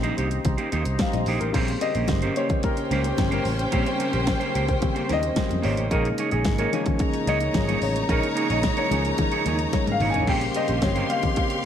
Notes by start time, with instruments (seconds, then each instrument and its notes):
Already playing: grand piano C#3 D#3 A#3 C4 G4, tonewheel organ G4 C5 D#5 A#5
0.03 clean electric guitar A#3 D#4 G4 C5, closed hi-hat
0.17 picked electric bass C2, clean electric guitar A#3 D#4 G4 C5, closed hi-hat
0.30 muted clean electric guitar stroke, closed hi-hat
0.44 picked electric bass C2, muted clean electric guitar stroke, kick, closed hi-hat, muted conga, low conga
0.58 clean electric guitar A#3 D#4 G4 C5, closed hi-hat
0.72 picked electric bass D#2, clean electric guitar A#3 D#4 G4 C5, closed hi-hat, muted conga
0.85 picked electric bass C2, muted clean electric guitar stroke, closed hi-hat
0.99 grand piano F5, muted clean electric guitar stroke, kick, snare, closed hi-hat, high conga
1.13 picked electric bass A#1, grand piano D#5, muted clean electric guitar stroke, closed hi-hat, high conga
1.26 picked electric bass A#1, clean electric guitar A#3 D#4 G4 C5, open hi-hat
1.40 picked electric bass A1, clean electric guitar A#3 D#4 G4 C5, grand piano A#4, closed hi-hat
1.53 picked electric bass A#1, grand piano C#3 G3 C4, tonewheel organ C#3 A#3 G4 C5, clean electric guitar A#3 C#4 G4 C5, kick, closed hi-hat, crash
1.68 closed hi-hat
1.81 clean electric guitar A#3 C#4 G4 C5, grand piano D#5, closed hi-hat, muted conga
1.95 picked electric bass A#1, clean electric guitar A#3 C#4 G4 C5, closed hi-hat
2.08 picked electric bass G1, muted clean electric guitar stroke, kick, snare, closed hi-hat, high conga
2.22 clean electric guitar A#3 C#4 G4 C5, closed hi-hat
2.36 clean electric guitar A#3 C#4 G4 C5, grand piano C#5, closed hi-hat
2.49 muted clean electric guitar stroke, kick, closed hi-hat, low conga
2.63 string section C#4 C5 G5, grand piano A#4, muted clean electric guitar stroke, kick, closed hi-hat, muted conga
2.77 muted clean electric guitar stroke, closed hi-hat
2.91 picked electric bass C#2, clean electric guitar A#3 C#4 G4 C5, snare, closed hi-hat, muted conga
3.04 grand piano G4, muted clean electric guitar stroke, closed hi-hat
3.17 picked electric bass G1, muted clean electric guitar stroke, kick, snare, closed hi-hat, high conga
3.31 clean electric guitar A#3 C#4 G4 C5, grand piano A#4, closed hi-hat, high conga
3.45 picked electric bass A1, muted clean electric guitar stroke, open hi-hat
3.58 muted clean electric guitar stroke, closed hi-hat
3.72 picked electric bass A#1, grand piano C#3 G3 C4, clean electric guitar A#3 C#4 G4 C5, kick, closed hi-hat
3.86 closed hi-hat
3.99 clean electric guitar A#3 C#4 G4 C5, closed hi-hat, muted conga
4.13 picked electric bass A#1, clean electric guitar A#3 C#4 G4 C5, closed hi-hat
4.27 muted clean electric guitar stroke, kick, snare, closed hi-hat, high conga
4.40 clean electric guitar A#3 C#4 G4 C5, closed hi-hat
4.54 picked electric bass C#2, clean electric guitar A#3 C#4 G4 C5, closed hi-hat
4.68 muted clean electric guitar stroke, kick, closed hi-hat
4.81 grand piano C#3 G3 C4, muted clean electric guitar stroke, kick, closed hi-hat, muted conga, low conga
4.95 clean electric guitar A#3 C#4 G4 C5, closed hi-hat
5.09 picked electric bass D#2, clean electric guitar A#3 C#4 G4 C5, grand piano D#5, snare, closed hi-hat, muted conga
5.23 muted clean electric guitar stroke, closed hi-hat
5.36 muted clean electric guitar stroke, kick, snare, closed hi-hat, high conga
5.49 picked electric bass F2, muted clean electric guitar stroke, closed hi-hat, high conga
5.62 picked electric bass G#1, clean electric guitar A#3 C#4 G4 C5, grand piano C#5, open hi-hat
5.77 picked electric bass A1, clean electric guitar A#3 C#4 G4 C5, closed hi-hat
5.91 picked electric bass A#1, tonewheel organ G#3 D#4, clean electric guitar A#3 D#4 G#4 C#5, grand piano A#4, kick, closed hi-hat
6.05 closed hi-hat
6.18 clean electric guitar A#3 D#4 G#4 C#5, closed hi-hat, muted conga
6.31 picked electric bass A#1, clean electric guitar A#3 D#4 G#4 C#5, grand piano G#4, closed hi-hat
6.45 picked electric bass G#1, kick, snare, closed hi-hat, high conga
6.58 clean electric guitar A#3 D#4 G#4 C#5, grand piano A#4, closed hi-hat
6.72 grand piano F3 G#3 C#4, clean electric guitar A#3 D#4 G#4 C#5, closed hi-hat
6.86 kick, closed hi-hat, low conga
6.99 string section D#4 C#5 A#5, muted clean electric guitar stroke, kick, closed hi-hat, muted conga
7.14 muted clean electric guitar stroke, closed hi-hat
7.27 picked electric bass C#2, clean electric guitar A#3 D#4 G#4 C#5, grand piano D#5, snare, closed hi-hat, muted conga
7.40 muted clean electric guitar stroke, closed hi-hat
7.54 picked electric bass G#1, grand piano F3 G#3 C#4, muted clean electric guitar stroke, kick, snare, closed hi-hat, high conga
7.68 clean electric guitar A#3 D#4 G#4 C#5, closed hi-hat, high conga
7.82 picked electric bass A1, grand piano C#5, muted clean electric guitar stroke, open hi-hat
7.96 muted clean electric guitar stroke, closed hi-hat
8.09 picked electric bass A#1, clean electric guitar A#3 D#4 G#4 C#5, grand piano A#4, kick, closed hi-hat
8.23 closed hi-hat
8.35 clean electric guitar A#3 D#4 G#4 C#5, closed hi-hat
8.50 picked electric bass A#1, clean electric guitar A#3 D#4 G#4 C#5, grand piano D#5, closed hi-hat
8.63 muted clean electric guitar stroke, kick, snare, closed hi-hat, high conga
8.77 clean electric guitar A#3 D#4 G#4 C#5, grand piano C#5, closed hi-hat
8.90 picked electric bass C#2, grand piano F3 G#3 C#4, clean electric guitar A#3 D#4 G#4 C#5, closed hi-hat
9.05 muted clean electric guitar stroke, closed hi-hat
9.18 muted clean electric guitar stroke, kick, closed hi-hat, muted conga, low conga
9.32 clean electric guitar A#3 D#4 G#4 C#5, closed hi-hat
9.46 picked electric bass D#2, clean electric guitar A#3 D#4 G#4 C#5, closed hi-hat, muted conga
9.59 muted clean electric guitar stroke, closed hi-hat
9.73 grand piano C#5, muted clean electric guitar stroke, kick, snare, closed hi-hat, high conga
9.87 picked electric bass G#2, muted clean electric guitar stroke, closed hi-hat, high conga
9.92 grand piano F5
10.00 picked electric bass G#1, clean electric guitar A#3 D#4 G#4 C#5, mid tom, open hi-hat
10.10 grand piano G#5, floor tom
10.14 picked electric bass A1, clean electric guitar A#3 D#4 G#4 C#5, closed hi-hat
10.27 picked electric bass A#1, grand piano C#3 G3 C4 G5, clean electric guitar A#3 C#4 G4 C5, tonewheel organ C4 G4, string section G4 F5 C6, kick, crash
10.41 closed hi-hat
10.54 clean electric guitar A#3 C#4 G4 C5, grand piano D#5, closed hi-hat
10.68 picked electric bass A#1, clean electric guitar A#3 C#4 G4 C5, closed hi-hat
10.82 picked electric bass G1, grand piano C#5, muted clean electric guitar stroke, kick, snare, closed hi-hat, high conga
10.95 clean electric guitar A#3 C#4 G4 C5, closed hi-hat
11.09 clean electric guitar A#3 C#4 G4 C5, grand piano F5, closed hi-hat
11.23 muted clean electric guitar stroke, kick, closed hi-hat, low conga
11.36 muted clean electric guitar stroke, kick, closed hi-hat, muted conga
11.50 muted clean electric guitar stroke, closed hi-hat